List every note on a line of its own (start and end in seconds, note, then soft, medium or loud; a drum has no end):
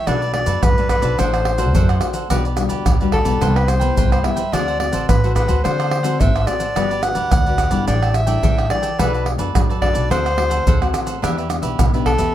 0.07 0.43 B1 medium
0.07 0.60 B2 medium
0.07 0.24 A3 medium
0.07 0.20 D4 medium
0.07 0.24 D4 medium
0.07 0.24 F#4 medium
0.07 0.20 A4 medium
0.07 0.21 B4 medium
0.07 0.33 D5 medium
0.07 0.21 D5 medium
0.07 pandeiro medium
0.07 tamborim medium
0.07 maracas medium
0.07 surdo medium
0.22 0.33 A4 soft
0.22 0.33 B4 soft
0.22 0.34 D5 soft
0.22 pandeiro soft
0.22 maracas soft
0.34 0.72 A3 medium
0.34 0.72 D4 soft
0.34 0.72 F#4 medium
0.34 0.65 D5 medium
0.34 muted cavaquinho stroke soft
0.34 pandeiro medium
0.34 tamborim medium
0.46 0.60 F#2 medium
0.46 0.75 A4 medium
0.46 0.75 B4 medium
0.46 0.74 D5 medium
0.46 pandeiro medium
0.46 maracas medium
0.63 0.99 F#2 medium
0.63 1.16 F#3 soft
0.63 0.89 B4 medium
0.63 pandeiro medium
0.63 tamborim medium
0.63 maracas medium
0.63 surdo loud
0.78 1.01 A3 medium
0.78 1.01 D4 medium
0.78 1.01 F#4 medium
0.78 0.89 A4 soft
0.78 0.90 B4 soft
0.78 0.90 D5 medium
0.78 pandeiro soft
0.78 maracas soft
0.89 1.03 D4 soft
0.89 1.03 A4 medium
0.89 1.16 B4 medium
0.89 1.02 B4 soft
0.89 1.01 D5 medium
0.89 pandeiro medium
0.89 tamborim medium
0.89 maracas medium
0.89 surdo medium
1.02 1.15 B1 medium
1.02 1.55 D4 medium
1.02 1.55 F#4 medium
1.02 1.17 A4 medium
1.02 1.17 B4 medium
1.02 1.55 C5 medium
1.02 1.16 D5 medium
1.02 pandeiro soft
1.02 maracas medium
1.18 1.75 A1 loud
1.18 1.72 A3 soft
1.18 1.31 D4 medium
1.18 1.32 A4 medium
1.18 1.32 C5 medium
1.18 1.99 C5 medium
1.18 1.32 F#5 medium
1.18 pandeiro medium
1.18 tamborim medium
1.18 maracas medium
1.18 surdo medium
1.33 1.45 A4 soft
1.33 1.45 C5 soft
1.33 1.45 F#5 soft
1.33 pandeiro soft
1.33 tamborim medium
1.33 maracas soft
1.45 muted cavaquinho stroke soft
1.45 pandeiro medium
1.45 tamborim medium
1.58 1.97 D4 medium
1.58 1.97 F#4 medium
1.58 1.73 A4 medium
1.58 1.97 C5 medium
1.58 1.73 C5 medium
1.58 1.72 F#5 medium
1.58 pandeiro medium
1.58 maracas medium
1.74 1.98 F#2 medium
1.74 2.28 A3 medium
1.74 1.87 D4 medium
1.74 1.88 A4 medium
1.74 1.88 C5 medium
1.74 1.88 F#5 medium
1.74 pandeiro medium
1.74 maracas medium
1.74 surdo loud
1.89 2.14 A4 soft
1.89 2.13 C5 soft
1.89 2.12 F#5 medium
1.89 pandeiro soft
1.89 tamborim medium
1.89 maracas soft
2.01 2.25 D4 soft
2.01 2.25 F#4 medium
2.01 2.26 C5 medium
2.01 pandeiro medium
2.01 tamborim medium
2.01 maracas medium
2.13 2.29 A4 soft
2.13 2.28 C5 soft
2.13 2.28 F#5 medium
2.13 pandeiro medium
2.13 maracas medium
2.30 2.66 B1 medium
2.30 2.83 B2 medium
2.30 2.47 G3 medium
2.30 2.47 D4 medium
2.30 2.43 F#4 medium
2.30 2.47 F#4 medium
2.30 2.43 G4 medium
2.30 2.44 B4 medium
2.30 2.44 D5 medium
2.30 pandeiro medium
2.30 tamborim medium
2.30 maracas medium
2.30 surdo medium
2.45 2.56 G4 soft
2.45 2.56 B4 soft
2.45 2.56 D5 soft
2.45 pandeiro soft
2.45 maracas soft
2.57 2.95 G3 soft
2.57 2.95 D4 medium
2.57 2.95 F#4 medium
2.57 muted cavaquinho stroke soft
2.57 pandeiro medium
2.57 tamborim medium
2.57 maracas medium
2.69 2.83 D2 medium
2.69 2.98 G4 medium
2.69 2.98 B4 medium
2.69 2.97 D5 medium
2.69 pandeiro medium
2.69 maracas medium
2.86 3.22 D2 medium
2.86 3.39 B2 medium
2.86 pandeiro medium
2.86 tamborim medium
2.86 maracas medium
2.86 surdo loud
3.00 3.24 G3 medium
3.00 3.24 D4 medium
3.00 3.24 F#4 medium
3.00 3.12 G4 soft
3.00 3.12 B4 soft
3.00 3.13 D5 soft
3.00 pandeiro soft
3.00 maracas soft
3.12 3.26 F#4 medium
3.12 3.26 G4 soft
3.12 3.58 A4 medium
3.12 3.24 B4 medium
3.12 3.23 D5 medium
3.12 pandeiro medium
3.12 tamborim medium
3.12 surdo medium
3.25 3.38 B1 medium
3.25 3.78 G3 medium
3.25 3.78 B3 medium
3.25 3.78 E4 medium
3.25 3.40 G4 medium
3.25 3.40 B4 medium
3.25 3.39 D5 medium
3.25 pandeiro medium
3.25 maracas medium
3.41 3.89 C2 loud
3.41 3.94 C3 soft
3.41 3.54 E4 medium
3.41 3.55 B4 medium
3.41 3.55 C5 medium
3.41 3.54 G5 medium
3.41 pandeiro medium
3.41 tamborim medium
3.41 maracas medium
3.41 surdo medium
3.55 3.70 B4 medium
3.55 3.67 B4 medium
3.55 3.67 C5 soft
3.55 3.68 G5 medium
3.55 pandeiro soft
3.55 tamborim medium
3.55 maracas soft
3.68 4.11 C5 medium
3.68 muted cavaquinho stroke soft
3.68 pandeiro medium
3.68 tamborim medium
3.68 maracas medium
3.80 4.20 G3 medium
3.80 4.20 B3 medium
3.80 4.20 E4 medium
3.80 3.95 B4 medium
3.80 3.95 C5 medium
3.80 3.94 G5 medium
3.80 pandeiro medium
3.80 maracas medium
3.96 4.21 C2 medium
3.96 4.50 G2 medium
3.96 4.10 E4 medium
3.96 4.11 B4 medium
3.96 4.10 C5 medium
3.96 4.10 G5 medium
3.96 pandeiro medium
3.96 maracas medium
3.96 surdo medium
4.12 4.35 B4 soft
4.12 4.26 C5 medium
4.12 4.36 C5 soft
4.12 4.34 G5 soft
4.12 pandeiro soft
4.12 tamborim medium
4.12 maracas soft
4.23 4.41 G3 medium
4.23 4.41 B3 medium
4.23 4.41 E4 medium
4.23 4.55 E5 medium
4.23 pandeiro medium
4.23 tamborim medium
4.36 4.51 B4 soft
4.36 4.51 C5 soft
4.36 4.50 G5 soft
4.36 pandeiro medium
4.36 maracas medium
4.52 4.89 D2 medium
4.52 5.06 D3 medium
4.52 4.77 A3 medium
4.52 4.77 C4 medium
4.52 4.66 D4 medium
4.52 4.77 F#4 medium
4.52 4.66 A4 medium
4.52 4.66 C5 medium
4.52 4.79 D5 medium
4.52 4.67 F#5 medium
4.52 pandeiro medium
4.52 tamborim medium
4.52 maracas medium
4.52 surdo medium
4.68 4.79 A4 soft
4.68 4.79 C5 soft
4.68 4.80 F#5 medium
4.68 pandeiro soft
4.68 maracas soft
4.79 5.18 A3 medium
4.79 5.18 C4 medium
4.79 5.18 F#4 medium
4.79 5.06 D5 medium
4.79 muted cavaquinho stroke soft
4.79 pandeiro medium
4.79 tamborim medium
4.92 5.06 A1 medium
4.92 5.21 A4 soft
4.92 5.21 C5 medium
4.92 5.21 F#5 medium
4.92 pandeiro medium
4.92 maracas medium
5.09 5.45 A1 medium
5.09 5.62 A2 medium
5.09 5.34 B4 medium
5.09 pandeiro medium
5.09 tamborim medium
5.09 maracas medium
5.09 surdo loud
5.23 5.46 A3 medium
5.23 5.47 C4 medium
5.23 5.47 F#4 medium
5.23 5.35 A4 soft
5.23 5.35 C5 soft
5.23 5.36 F#5 soft
5.23 pandeiro soft
5.23 maracas soft
5.35 5.49 D4 soft
5.35 5.49 A4 medium
5.35 5.62 B4 medium
5.35 5.48 C5 medium
5.35 5.47 F#5 soft
5.35 pandeiro medium
5.35 tamborim medium
5.35 maracas medium
5.35 surdo medium
5.48 5.61 D2 medium
5.48 5.59 A3 medium
5.48 5.59 C4 soft
5.48 5.59 F#4 medium
5.48 5.63 A4 medium
5.48 5.63 C5 medium
5.48 5.62 F#5 medium
5.48 pandeiro medium
5.48 maracas medium
5.64 6.17 D3 soft
5.64 6.22 D3 loud
5.64 6.02 A3 medium
5.64 6.02 C4 soft
5.64 5.77 D4 medium
5.64 6.02 F#4 medium
5.64 5.78 A4 medium
5.64 6.22 C5 medium
5.64 5.78 C5 medium
5.64 5.78 F#5 medium
5.64 pandeiro medium
5.64 tamborim medium
5.64 maracas medium
5.64 surdo medium
5.79 5.90 A4 soft
5.79 5.91 C5 soft
5.79 5.91 F#5 medium
5.79 pandeiro soft
5.79 tamborim medium
5.79 maracas soft
5.91 muted cavaquinho stroke soft
5.91 pandeiro medium
5.91 tamborim medium
6.03 6.42 A3 medium
6.03 6.43 C4 medium
6.03 6.43 F#4 medium
6.03 6.19 A4 medium
6.03 6.18 C5 medium
6.03 6.18 F#5 medium
6.03 pandeiro medium
6.03 maracas medium
6.20 6.44 G#1 medium
6.20 6.73 A2 medium
6.20 6.33 D4 medium
6.20 6.33 A4 medium
6.20 6.33 C5 medium
6.20 6.48 E5 medium
6.20 6.33 F#5 medium
6.20 pandeiro medium
6.20 maracas medium
6.20 surdo medium
6.35 6.60 A4 soft
6.35 6.59 C5 soft
6.35 6.59 F#5 soft
6.35 pandeiro soft
6.35 tamborim medium
6.35 maracas soft
6.47 6.64 A3 soft
6.47 6.64 C4 medium
6.47 6.64 F#4 medium
6.47 7.04 D5 medium
6.47 pandeiro medium
6.47 tamborim medium
6.47 maracas medium
6.60 6.75 A4 soft
6.60 6.74 C5 soft
6.60 6.74 F#5 soft
6.60 pandeiro medium
6.60 maracas medium
6.75 7.12 G1 medium
6.75 7.29 G3 soft
6.75 7.00 D4 medium
6.75 6.89 F#4 medium
6.75 7.00 F#4 medium
6.75 6.89 G4 medium
6.75 6.89 B4 medium
6.75 7.00 B4 medium
6.75 6.89 D5 medium
6.75 pandeiro medium
6.75 tamborim medium
6.75 maracas medium
6.75 surdo medium
6.90 7.02 G4 soft
6.90 7.02 B4 soft
6.90 7.02 D5 medium
6.90 pandeiro soft
6.90 maracas soft
7.02 7.41 D4 soft
7.02 7.41 F#4 medium
7.02 7.41 B4 medium
7.02 7.31 F#5 medium
7.02 muted cavaquinho stroke soft
7.02 pandeiro medium
7.02 tamborim medium
7.02 maracas medium
7.15 7.29 D2 medium
7.15 7.44 G4 soft
7.15 7.44 B4 medium
7.15 7.43 D5 medium
7.15 pandeiro medium
7.15 maracas medium
7.32 7.68 D2 medium
7.32 7.85 D3 medium
7.32 7.84 F#5 loud
7.32 pandeiro medium
7.32 tamborim medium
7.32 maracas medium
7.32 surdo loud
7.46 7.70 D4 medium
7.46 7.70 F#4 medium
7.46 7.57 G4 soft
7.46 7.58 B4 soft
7.46 7.70 B4 medium
7.46 7.59 D5 soft
7.46 pandeiro soft
7.46 maracas soft
7.58 7.72 F#4 soft
7.58 7.71 G4 soft
7.58 7.71 B4 soft
7.58 7.69 D5 medium
7.58 pandeiro medium
7.58 tamborim medium
7.58 maracas medium
7.58 surdo medium
7.71 7.85 G1 medium
7.71 8.24 G3 soft
7.71 8.24 D4 soft
7.71 8.25 E4 medium
7.71 7.86 G4 medium
7.71 7.86 B4 medium
7.71 7.85 D5 medium
7.71 pandeiro medium
7.71 maracas medium
7.87 8.35 A1 loud
7.87 8.41 A2 soft
7.87 8.01 D4 medium
7.87 8.01 A4 medium
7.87 8.16 D5 medium
7.87 8.01 D5 medium
7.87 8.01 G5 medium
7.87 pandeiro medium
7.87 tamborim medium
7.87 maracas medium
7.87 surdo medium
8.02 8.13 A4 soft
8.02 8.13 D5 soft
8.02 8.14 G5 soft
8.02 pandeiro soft
8.02 tamborim medium
8.02 maracas soft
8.14 8.70 E5 loud
8.14 muted cavaquinho stroke soft
8.14 pandeiro medium
8.14 tamborim medium
8.14 maracas medium
8.27 8.66 G3 medium
8.27 8.66 D4 medium
8.27 8.66 E4 medium
8.27 8.42 A4 medium
8.27 8.42 D5 medium
8.27 8.41 G5 medium
8.27 pandeiro medium
8.27 maracas medium
8.43 8.68 A1 medium
8.43 8.97 E3 medium
8.43 8.56 D4 medium
8.43 8.56 A4 medium
8.43 8.57 D5 medium
8.43 8.56 G5 medium
8.43 pandeiro medium
8.43 maracas medium
8.43 surdo loud
8.57 8.83 A4 soft
8.57 8.81 D5 soft
8.57 8.81 G5 soft
8.57 pandeiro soft
8.57 tamborim medium
8.57 maracas soft
8.70 8.87 G3 medium
8.70 8.88 D4 soft
8.70 8.88 E4 medium
8.70 9.01 D5 medium
8.70 pandeiro medium
8.70 tamborim medium
8.82 8.98 A4 soft
8.82 8.97 D5 soft
8.82 8.97 G5 soft
8.82 pandeiro medium
8.82 maracas medium
8.98 9.35 B1 medium
8.98 9.53 B2 medium
8.98 9.37 A3 medium
8.98 9.12 D4 medium
8.98 9.37 D4 medium
8.98 9.37 F#4 medium
8.98 9.12 A4 medium
8.98 9.12 B4 medium
8.98 9.28 B4 medium
8.98 9.12 D5 medium
8.98 pandeiro medium
8.98 tamborim medium
8.98 maracas medium
8.98 surdo medium
9.14 9.25 A4 soft
9.14 9.25 B4 soft
9.14 9.25 D5 soft
9.14 pandeiro soft
9.14 maracas soft
9.25 muted cavaquinho stroke soft
9.25 pandeiro medium
9.25 tamborim medium
9.38 9.52 F#2 medium
9.38 9.49 A3 medium
9.38 9.50 D4 medium
9.38 9.50 F#4 medium
9.38 9.68 A4 soft
9.38 9.67 B4 medium
9.38 9.67 D5 medium
9.38 pandeiro medium
9.38 maracas medium
9.55 9.91 F#2 medium
9.55 10.08 F#3 soft
9.55 9.72 A3 medium
9.55 9.72 D4 medium
9.55 9.72 F#4 medium
9.55 pandeiro medium
9.55 tamborim medium
9.55 maracas medium
9.55 surdo loud
9.69 9.81 A4 soft
9.69 9.82 B4 soft
9.69 9.82 D5 medium
9.69 pandeiro soft
9.69 maracas soft
9.81 10.08 A3 soft
9.81 9.95 D4 soft
9.81 10.08 D4 medium
9.81 10.08 F#4 medium
9.81 9.95 A4 soft
9.81 9.94 B4 medium
9.81 10.08 D5 medium
9.81 9.93 D5 medium
9.81 pandeiro medium
9.81 tamborim medium
9.81 surdo medium
9.94 10.08 B1 medium
9.94 10.09 A4 medium
9.94 10.09 B4 medium
9.94 10.08 D5 medium
9.94 pandeiro medium
9.94 maracas medium
10.10 10.59 D2 loud
10.10 10.64 D3 medium
10.10 10.27 A3 medium
10.10 10.28 C4 medium
10.10 10.24 D4 medium
10.10 10.28 F#4 medium
10.10 10.24 A4 medium
10.10 10.91 C5 loud
10.10 10.24 C5 medium
10.10 10.24 F#5 medium
10.10 pandeiro medium
10.10 tamborim medium
10.10 maracas medium
10.10 surdo medium
10.25 10.36 A4 soft
10.25 10.37 C5 soft
10.25 10.37 F#5 medium
10.25 pandeiro soft
10.25 tamborim medium
10.25 maracas soft
10.37 10.64 A3 soft
10.37 10.65 C4 soft
10.37 10.65 F#4 medium
10.37 muted cavaquinho stroke soft
10.37 pandeiro medium
10.37 tamborim medium
10.50 10.65 A4 medium
10.50 10.65 C5 medium
10.50 10.64 F#5 medium
10.50 pandeiro medium
10.50 maracas medium
10.66 10.91 D2 medium
10.66 11.20 A2 medium
10.66 10.80 D4 medium
10.66 10.80 A4 medium
10.66 10.80 C5 medium
10.66 10.80 F#5 medium
10.66 pandeiro medium
10.66 maracas medium
10.66 surdo loud
10.81 11.19 A3 medium
10.81 11.19 C4 medium
10.81 11.19 F#4 medium
10.81 11.07 A4 soft
10.81 11.06 C5 soft
10.81 11.05 F#5 medium
10.81 pandeiro soft
10.81 tamborim medium
10.81 maracas soft
10.94 pandeiro medium
10.94 tamborim medium
10.94 maracas medium
11.06 11.21 A4 soft
11.06 11.21 C5 soft
11.06 11.20 F#5 soft
11.06 pandeiro medium
11.06 maracas medium
11.22 11.59 E2 medium
11.22 11.76 E3 medium
11.22 11.46 B3 medium
11.22 11.36 D4 medium
11.22 11.46 D4 medium
11.22 11.36 G4 medium
11.22 11.47 G4 medium
11.22 11.36 B4 medium
11.22 11.36 E5 medium
11.22 pandeiro medium
11.22 tamborim medium
11.22 maracas medium
11.22 surdo medium
11.37 11.48 G4 soft
11.37 11.49 B4 soft
11.37 11.49 E5 soft
11.37 pandeiro soft
11.37 maracas soft
11.49 11.76 B3 medium
11.49 11.77 D4 medium
11.49 11.77 G4 medium
11.49 muted cavaquinho stroke soft
11.49 pandeiro medium
11.49 tamborim medium
11.49 maracas medium
11.62 11.76 B1 medium
11.62 11.91 G4 medium
11.62 11.91 B4 medium
11.62 11.90 E5 medium
11.62 pandeiro medium
11.62 maracas medium
11.79 12.15 B1 medium
11.79 12.32 B2 soft
11.79 pandeiro medium
11.79 tamborim medium
11.79 maracas medium
11.79 surdo loud
11.93 12.17 B3 medium
11.93 12.17 D4 medium
11.93 12.17 G4 medium
11.93 12.05 G4 soft
11.93 12.05 B4 soft
11.93 12.06 E5 medium
11.93 pandeiro soft
11.93 maracas soft
12.06 12.19 D4 soft
12.06 12.19 G4 medium
12.06 12.35 A4 medium
12.06 12.18 B4 soft
12.06 12.17 E5 medium
12.06 pandeiro medium
12.06 tamborim medium
12.06 surdo medium
12.18 12.31 E2 loud
12.18 12.35 A3 medium
12.18 12.35 C#4 medium
12.18 12.35 G4 medium
12.18 12.33 G4 medium
12.18 12.33 B4 medium
12.18 12.33 E5 medium
12.18 pandeiro medium
12.18 maracas medium